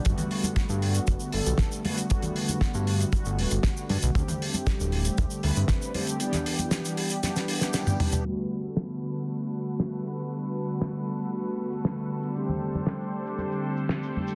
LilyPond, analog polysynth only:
\new Staff \with { instrumentName = "Analog polysynth" } { \time 4/4 \key g \major \tempo 4 = 117 <d g a b fis'>2~ <d g a b fis'>8 <d g a b a'>4 <d g a b fis'>8 | <d g a b fis'>2 <d g a b fis'>2 | <d g a c' g'>2~ <d g a c' g'>8 <d g a c' b'>4 <d g a c' g'>8 | <e g b d' g'>2 <e g b d' g'>8. <e g b d' g'>8. <e g b d' g'>8 |
<d g a b fis'>1~ | <d g a b fis'>1 | <d g a c' g'>1 | }